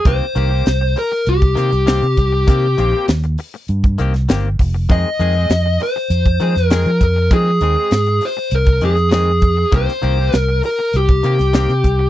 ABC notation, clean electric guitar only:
X:1
M:4/4
L:1/16
Q:1/4=99
K:Cm
V:1 name="Clean electric guitar"
[E,B,CG] z [E,B,CG] [B,CG] z6 [E,B,CG] z [E,B,CG] z3 | [E,B,CG] z [E,B,CG] [B,CG] z6 [E,B,CG] z [E,B,CG] z3 | [E,A,CA] z [E,A,CA] [A,CA] z6 [E,A,CA] z [E,A,CA] z3 | [E,A,CA] z [E,A,CA] [A,CA] z6 [E,A,CA] z [E,A,CA] z3 |
[E,B,CG] z [E,B,CG] [B,CG] z6 [E,B,CG] z [E,B,CG] z3 |]